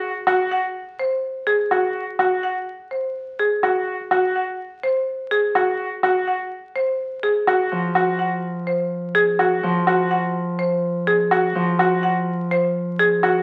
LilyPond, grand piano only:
\new Staff \with { instrumentName = "Grand piano" } { \time 4/4 \key ges \lydian \tempo 4 = 125 r8 ges'8 r2 r8 ges'8 | r8 ges'8 r2 r8 ges'8 | r8 ges'8 r2 r8 ges'8 | r8 ges'8 r2 r8 ges'8 |
r8 ges'8 r2 r8 ges'8 | r8 ges'8 r2 r8 ges'8 | r8 ges'8 r2 r8 ges'8 | }